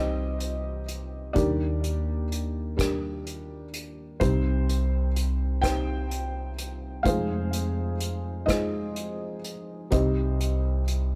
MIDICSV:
0, 0, Header, 1, 4, 480
1, 0, Start_track
1, 0, Key_signature, -3, "minor"
1, 0, Tempo, 952381
1, 686, Time_signature, 6, 3, 24, 8
1, 5621, End_track
2, 0, Start_track
2, 0, Title_t, "Felt piano"
2, 0, Program_c, 0, 0
2, 0, Control_c, 0, 64, 127
2, 0, Note_on_c, 0, 36, 56
2, 0, Note_on_c, 0, 48, 53
2, 0, Note_on_c, 0, 55, 55
2, 0, Note_on_c, 0, 60, 52
2, 0, Note_on_c, 0, 63, 54
2, 0, Note_on_c, 0, 67, 78
2, 0, Note_on_c, 0, 72, 66
2, 0, Note_on_c, 0, 75, 103
2, 402, Note_off_c, 0, 55, 0
2, 404, Note_off_c, 0, 60, 0
2, 405, Note_off_c, 0, 63, 0
2, 407, Note_off_c, 0, 72, 0
2, 660, Note_off_c, 0, 48, 0
2, 660, Note_off_c, 0, 75, 0
2, 662, Note_off_c, 0, 36, 0
2, 667, Note_off_c, 0, 67, 0
2, 672, Note_on_c, 0, 74, 87
2, 676, Note_on_c, 0, 55, 69
2, 677, Note_on_c, 0, 62, 63
2, 680, Note_on_c, 0, 39, 53
2, 680, Note_on_c, 0, 51, 61
2, 681, Note_on_c, 0, 63, 58
2, 684, Note_on_c, 0, 67, 74
2, 687, Note_on_c, 0, 70, 72
2, 693, Control_c, 0, 64, 0
2, 794, Control_c, 0, 64, 127
2, 1121, Note_off_c, 0, 55, 0
2, 1122, Note_off_c, 0, 62, 0
2, 1124, Note_off_c, 0, 63, 0
2, 1127, Note_off_c, 0, 70, 0
2, 1137, Note_off_c, 0, 74, 0
2, 1144, Note_off_c, 0, 67, 0
2, 1394, Note_on_c, 0, 55, 62
2, 1398, Note_on_c, 0, 62, 55
2, 1399, Note_on_c, 0, 70, 65
2, 1400, Note_on_c, 0, 67, 60
2, 1838, Note_off_c, 0, 55, 0
2, 1840, Note_off_c, 0, 62, 0
2, 1840, Note_off_c, 0, 70, 0
2, 1841, Note_off_c, 0, 67, 0
2, 2096, Note_off_c, 0, 39, 0
2, 2096, Note_off_c, 0, 51, 0
2, 2116, Note_on_c, 0, 55, 79
2, 2116, Note_on_c, 0, 72, 87
2, 2118, Note_on_c, 0, 60, 63
2, 2120, Note_on_c, 0, 63, 71
2, 2121, Note_on_c, 0, 36, 58
2, 2124, Note_on_c, 0, 48, 60
2, 2126, Control_c, 0, 64, 0
2, 2213, Control_c, 0, 64, 127
2, 2557, Note_off_c, 0, 55, 0
2, 2559, Note_off_c, 0, 60, 0
2, 2560, Note_off_c, 0, 63, 0
2, 2830, Note_on_c, 0, 79, 108
2, 2833, Note_off_c, 0, 72, 0
2, 2834, Note_on_c, 0, 55, 62
2, 2836, Note_on_c, 0, 60, 53
2, 2837, Note_on_c, 0, 63, 58
2, 2841, Note_on_c, 0, 72, 74
2, 3276, Note_off_c, 0, 55, 0
2, 3276, Note_off_c, 0, 60, 0
2, 3277, Note_off_c, 0, 63, 0
2, 3279, Note_off_c, 0, 72, 0
2, 3535, Note_off_c, 0, 36, 0
2, 3537, Note_off_c, 0, 48, 0
2, 3543, Note_on_c, 0, 77, 88
2, 3549, Note_on_c, 0, 56, 72
2, 3551, Note_on_c, 0, 29, 55
2, 3553, Note_on_c, 0, 63, 72
2, 3554, Note_on_c, 0, 41, 58
2, 3554, Note_on_c, 0, 65, 67
2, 3559, Note_on_c, 0, 72, 83
2, 3561, Control_c, 0, 64, 0
2, 3566, Note_on_c, 0, 68, 76
2, 3573, Note_off_c, 0, 79, 0
2, 3650, Control_c, 0, 64, 127
2, 3994, Note_off_c, 0, 56, 0
2, 3996, Note_off_c, 0, 63, 0
2, 3996, Note_off_c, 0, 65, 0
2, 3998, Note_off_c, 0, 72, 0
2, 4262, Note_off_c, 0, 68, 0
2, 4263, Note_on_c, 0, 75, 88
2, 4266, Note_on_c, 0, 63, 50
2, 4267, Note_on_c, 0, 56, 57
2, 4270, Note_on_c, 0, 65, 60
2, 4273, Note_on_c, 0, 72, 61
2, 4286, Note_on_c, 0, 68, 65
2, 4292, Note_off_c, 0, 77, 0
2, 4716, Note_off_c, 0, 56, 0
2, 4716, Note_off_c, 0, 63, 0
2, 4718, Note_off_c, 0, 65, 0
2, 4720, Note_off_c, 0, 72, 0
2, 4794, Note_off_c, 0, 75, 0
2, 4805, Note_off_c, 0, 68, 0
2, 4981, Note_off_c, 0, 29, 0
2, 4982, Note_off_c, 0, 41, 0
2, 4992, Note_on_c, 0, 55, 69
2, 4993, Note_on_c, 0, 36, 62
2, 4993, Note_on_c, 0, 60, 64
2, 4995, Note_on_c, 0, 48, 61
2, 4998, Note_on_c, 0, 63, 62
2, 4999, Note_on_c, 0, 72, 74
2, 5000, Note_on_c, 0, 75, 78
2, 5008, Control_c, 0, 64, 0
2, 5014, Note_on_c, 0, 67, 55
2, 5100, Control_c, 0, 64, 127
2, 5443, Note_off_c, 0, 55, 0
2, 5444, Note_off_c, 0, 60, 0
2, 5446, Note_off_c, 0, 63, 0
2, 5447, Note_off_c, 0, 72, 0
2, 5466, Note_off_c, 0, 75, 0
2, 5472, Note_off_c, 0, 67, 0
2, 5621, Note_off_c, 0, 36, 0
2, 5621, Note_off_c, 0, 48, 0
2, 5621, End_track
3, 0, Start_track
3, 0, Title_t, "Upright bass"
3, 0, Program_c, 1, 32
3, 0, Note_on_c, 1, 36, 76
3, 664, Note_off_c, 1, 36, 0
3, 686, Note_on_c, 1, 39, 83
3, 2099, Note_off_c, 1, 39, 0
3, 2121, Note_on_c, 1, 36, 81
3, 3535, Note_off_c, 1, 36, 0
3, 3557, Note_on_c, 1, 41, 76
3, 4984, Note_off_c, 1, 41, 0
3, 5001, Note_on_c, 1, 36, 80
3, 5621, Note_off_c, 1, 36, 0
3, 5621, End_track
4, 0, Start_track
4, 0, Title_t, "Drums"
4, 203, Note_on_c, 9, 42, 40
4, 254, Note_off_c, 9, 42, 0
4, 446, Note_on_c, 9, 42, 48
4, 496, Note_off_c, 9, 42, 0
4, 685, Note_on_c, 9, 42, 62
4, 686, Note_on_c, 9, 36, 85
4, 735, Note_off_c, 9, 42, 0
4, 736, Note_off_c, 9, 36, 0
4, 927, Note_on_c, 9, 42, 47
4, 977, Note_off_c, 9, 42, 0
4, 1170, Note_on_c, 9, 42, 48
4, 1220, Note_off_c, 9, 42, 0
4, 1406, Note_on_c, 9, 36, 60
4, 1408, Note_on_c, 9, 42, 66
4, 1415, Note_on_c, 9, 37, 79
4, 1456, Note_off_c, 9, 36, 0
4, 1458, Note_off_c, 9, 42, 0
4, 1466, Note_off_c, 9, 37, 0
4, 1647, Note_on_c, 9, 42, 45
4, 1697, Note_off_c, 9, 42, 0
4, 1883, Note_on_c, 9, 42, 50
4, 1934, Note_off_c, 9, 42, 0
4, 2121, Note_on_c, 9, 42, 65
4, 2123, Note_on_c, 9, 36, 86
4, 2172, Note_off_c, 9, 42, 0
4, 2173, Note_off_c, 9, 36, 0
4, 2366, Note_on_c, 9, 42, 50
4, 2416, Note_off_c, 9, 42, 0
4, 2602, Note_on_c, 9, 42, 55
4, 2653, Note_off_c, 9, 42, 0
4, 2839, Note_on_c, 9, 36, 62
4, 2841, Note_on_c, 9, 42, 71
4, 2849, Note_on_c, 9, 37, 96
4, 2890, Note_off_c, 9, 36, 0
4, 2891, Note_off_c, 9, 42, 0
4, 2899, Note_off_c, 9, 37, 0
4, 3081, Note_on_c, 9, 42, 48
4, 3131, Note_off_c, 9, 42, 0
4, 3319, Note_on_c, 9, 42, 49
4, 3369, Note_off_c, 9, 42, 0
4, 3556, Note_on_c, 9, 36, 89
4, 3556, Note_on_c, 9, 42, 71
4, 3606, Note_off_c, 9, 36, 0
4, 3606, Note_off_c, 9, 42, 0
4, 3796, Note_on_c, 9, 42, 53
4, 3846, Note_off_c, 9, 42, 0
4, 4034, Note_on_c, 9, 42, 58
4, 4085, Note_off_c, 9, 42, 0
4, 4277, Note_on_c, 9, 36, 60
4, 4278, Note_on_c, 9, 42, 71
4, 4285, Note_on_c, 9, 37, 94
4, 4327, Note_off_c, 9, 36, 0
4, 4328, Note_off_c, 9, 42, 0
4, 4336, Note_off_c, 9, 37, 0
4, 4517, Note_on_c, 9, 42, 45
4, 4567, Note_off_c, 9, 42, 0
4, 4760, Note_on_c, 9, 42, 47
4, 4810, Note_off_c, 9, 42, 0
4, 4998, Note_on_c, 9, 42, 68
4, 5001, Note_on_c, 9, 36, 83
4, 5049, Note_off_c, 9, 42, 0
4, 5052, Note_off_c, 9, 36, 0
4, 5245, Note_on_c, 9, 42, 50
4, 5295, Note_off_c, 9, 42, 0
4, 5483, Note_on_c, 9, 42, 49
4, 5533, Note_off_c, 9, 42, 0
4, 5621, End_track
0, 0, End_of_file